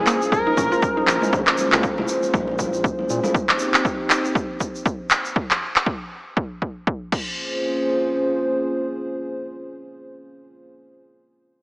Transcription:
Already playing: analog synth pad A#3 C#4 F4 G#4 C5, analog synth lead G#4
0.07 synth arpeggio sound A#3, clap, shaker
0.22 muted conga, shaker
0.31 analog synth bass F1, synth arpeggio sound G#4, analog synth lead A#4, kick, shaker
0.47 synth arpeggio sound D#4, muted conga
0.57 analog synth bass A#1, synth arpeggio sound C#4, kick, high conga, shaker
0.72 synth arpeggio sound F4, muted conga, shaker
0.82 kick, shaker
0.97 synth arpeggio sound D#4, high conga
1.07 analog synth bass A#1, analog synth lead A#4, clap, muted conga, shaker
1.22 synth arpeggio sound G#3, high conga, shaker
1.33 analog synth bass A#1, kick, muted conga, low conga, shaker
1.47 clap
1.58 muted conga, high conga, shaker
1.72 analog synth bass C#2, clap, low conga, shaker
1.83 kick, shaker
1.98 analog synth bass F1, muted conga, high conga
2.08 shaker
2.23 muted conga, shaker
2.34 analog synth bass A#1, kick, high conga, shaker
2.48 muted conga
2.59 kick, high conga, shaker
2.73 muted conga, shaker
2.84 kick, shaker
2.99 high conga
3.10 analog synth bass A#2, muted conga, shaker
3.23 high conga, shaker
3.34 analog synth pad C4 D#4 G4, kick, shaker
3.49 clap
3.59 shaker
3.74 clap, shaker
3.85 kick, shaker
4.10 clap, shaker
4.25 shaker
4.35 kick, shaker
4.60 kick, shaker
4.75 shaker
4.86 kick, shaker
5.10 clap, shaker
5.25 shaker
5.36 kick
5.51 clap
5.76 clap
5.86 kick
6.37 kick
6.62 kick
6.87 kick
7.12 analog synth pad A#3 C#4 F4 G#4 C5, kick, crash

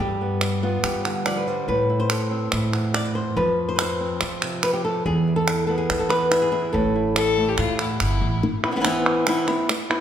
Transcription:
0.00 upright bass G2, nylon-string guitar G3 G4
0.21 nylon-string guitar B3
0.41 clap
0.63 nylon-string guitar B3 F4
0.83 upright bass G3, nylon-string guitar G4, clap
1.05 nylon-string guitar D3, clap
1.26 nylon-string guitar F3 D5, clap
1.37 nylon-string guitar B4
1.47 nylon-string guitar G3 C5
1.68 nylon-string guitar A2 B4, upright bass A2
1.90 nylon-string guitar E4
2.00 nylon-string guitar C5
2.10 nylon-string guitar A4, clap
2.31 nylon-string guitar C4
2.52 upright bass A2, nylon-string guitar E4, clap
2.73 nylon-string guitar E2, clap
2.94 nylon-string guitar D5, clap
3.05 nylon-string guitar B4
3.15 nylon-string guitar C5
3.36 upright bass F2, nylon-string guitar F3 B4
3.69 nylon-string guitar C5
3.76 nylon-string guitar B4, clap
3.82 nylon-string guitar C5
4.00 nylon-string guitar C4
4.21 upright bass F3, nylon-string guitar F4, clap
4.42 nylon-string guitar C3, clap
4.63 nylon-string guitar B4, clap
4.73 nylon-string guitar G4
4.85 nylon-string guitar A4
5.06 nylon-string guitar E2 G#4, upright bass E2
5.28 nylon-string guitar E4
5.36 nylon-string guitar A4
5.48 nylon-string guitar E4, clap
5.67 nylon-string guitar B3 A4
5.78 nylon-string guitar G#4
5.90 upright bass E3, clap
5.99 nylon-string guitar A4
6.09 nylon-string guitar E2 B4, clap
6.31 nylon-string guitar E4, clap
6.42 nylon-string guitar G#4
6.52 nylon-string guitar E4
6.73 upright bass A1, nylon-string guitar A2 A4
6.95 nylon-string guitar E4
7.16 violin A4, clap
7.38 nylon-string guitar A3
7.48 violin G4
7.58 upright bass A2, nylon-string guitar E4, violin F4, clap
7.79 nylon-string guitar E2, violin E4, clap
8.00 upright bass G1, violin E4, clap
8.22 upright bass A1
8.43 muted nylon-string guitar stroke
8.64 nylon-string guitar B3 C4 E4, clap
8.71 nylon-string guitar E3 B3 C4 E4
8.76 nylon-string guitar E3 B3 C4 E4
8.80 nylon-string guitar E3 B3 C4 E4
8.85 nylon-string guitar E3 B3 C4 E4, clap
9.06 clap
9.27 nylon-string guitar E3 B3 C4 E4, clap
9.47 nylon-string guitar B3 C4 E4, clap
9.69 muted nylon-string guitar stroke, clap
9.90 nylon-string guitar B3 C4 E4, clap

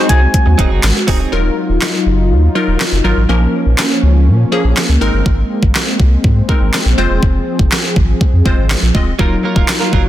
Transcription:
Already playing: synth stab G#3 D#4 F#4 C5, analog synth pad G#3 C4 F#4, soft synth lead D#5
0.09 sub bass C2, clean electric guitar F#3 C4 D#4 G#4, soft synth lead G#5, kick, closed hi-hat
0.21 muted clean electric guitar stroke
0.34 muted clean electric guitar stroke, kick, closed hi-hat
0.46 sub bass D#2, muted clean electric guitar stroke
0.58 sub bass D#1, clean electric guitar F#3 C4 D#4 G#4, kick, closed hi-hat
0.70 sub bass F#1, clean electric guitar F#3 C4 D#4 G#4
0.83 sub bass G#1, snare, clap, closed hi-hat
0.95 muted clean electric guitar stroke
1.07 sub bass D1, clean electric guitar F#3 C4 D#4 G#4, kick, open hi-hat
1.19 clean electric guitar F#3 C4 D#4 G#4
1.32 sub bass D#1, synth stab F#3 D#4 F4 A#4, analog synth pad F#3 D#4 F4
1.69 sub bass D#1
1.81 snare, clap
2.06 sub bass F#1
2.31 sub bass D#2
2.55 synth stab F#3 D#4 F4 A#4
2.68 sub bass D#1
2.80 snare, clap
2.92 sub bass F1
3.04 sub bass G#1, synth stab F#3 D#4 F4 A#4
3.17 sub bass A1
3.29 sub bass A#1, synth stab F3 A#3 C#4 A#4, analog synth pad F3 A#3 C#4
3.66 sub bass A#1
3.78 snare, clap
4.03 sub bass C#2
4.27 sub bass A#2
4.52 synth stab F3 A#3 C#4 G#4
4.64 sub bass A#1
4.77 snare, clap
4.89 sub bass C#2
5.01 sub bass G#1, synth stab G#3 C4 D#4 A#4, analog synth pad G#3 C4
5.14 sub bass G1
5.26 sub bass G#1, kick
5.63 sub bass G#1, kick
5.75 snare, clap
6.00 sub bass C2, kick
6.24 sub bass G#2, kick
6.49 synth stab G#3 C4 D#4 A#4, kick
6.61 sub bass G#1
6.73 snare, clap
6.86 sub bass A#1
6.98 sub bass F1, analog synth pad F3 G#4, synth stab G#3 C4 F4 C5
7.10 sub bass E1
7.23 sub bass F1, kick
7.59 sub bass F1, kick
7.71 snare, clap
7.96 sub bass G#1, kick
8.21 kick
8.33 sub bass F2
8.45 sub bass F1, synth stab G#3 C4 F4 C5, kick
8.58 sub bass G#1
8.70 snare, clap
8.82 sub bass A#1
8.94 sub bass D1, synth stab G#3 C4 F4 D#5, kick
9.19 sub bass D#1, clean electric guitar F#3 A#3 F4 A#4, synth stab F#3 D#4 F4 A#4, analog synth pad F#3 D#4 F4, kick
9.43 clean electric guitar F#3 A#3 F4 A#4
9.56 sub bass D#1, clean electric guitar F#3 A#3 F4 A#4, kick
9.68 muted clean electric guitar stroke, snare, clap
9.80 clean electric guitar F#3 A#3 F4 A#4
9.92 sub bass F#1, clean electric guitar F#3 A#3 F4 A#4, kick
10.05 muted clean electric guitar stroke

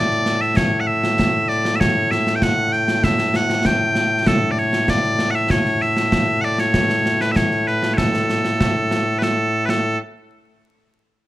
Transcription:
Already playing: bagpipes A2 A3 D5
0.11 snare
0.26 snare
0.41 bagpipes E5, snare
0.56 bagpipes C#5, concert bass drum, snare
0.80 bagpipes F#5
0.87 bagpipes E5
1.04 snare
1.19 concert bass drum, snare
1.49 bagpipes D5, snare
1.65 snare
1.76 bagpipes E5
1.80 bagpipes C#5, concert bass drum, snare
2.11 bagpipes E5, snare
2.27 snare
2.36 bagpipes G5
2.42 bagpipes F#5, concert bass drum, snare
2.72 bagpipes G5, snare
2.88 snare
3.04 bagpipes E5, concert bass drum, snare
3.18 snare
3.34 bagpipes F#5, snare
3.50 snare
3.65 bagpipes G5, concert bass drum, snare
3.95 snare
4.26 bagpipes A4, concert bass drum, snare
4.51 bagpipes D5
4.57 bagpipes C#5, snare
4.73 snare
4.88 bagpipes D5, concert bass drum, snare
5.03 snare
5.19 snare
5.31 bagpipes F#5, snare
5.35 bagpipes E5
5.50 bagpipes C#5, concert bass drum, snare
5.66 snare
5.81 bagpipes E5, snare
5.97 snare
6.12 concert bass drum, snare
6.41 bagpipes D5 F#5, snare
6.58 bagpipes C#5, snare
6.74 concert bass drum, snare
6.90 snare
7.06 snare
7.21 bagpipes B4, snare
7.32 bagpipes E5
7.36 bagpipes C#5, concert bass drum, snare
7.51 snare
7.67 bagpipes B4, snare
7.83 snare
7.94 bagpipes A4 C#5
7.98 concert bass drum, snare
8.14 snare
8.29 snare
8.45 snare
8.61 concert bass drum, snare
8.91 snare
9.18 bagpipes B4, snare
9.23 bagpipes A4
9.65 bagpipes B4, snare
9.69 bagpipes A4

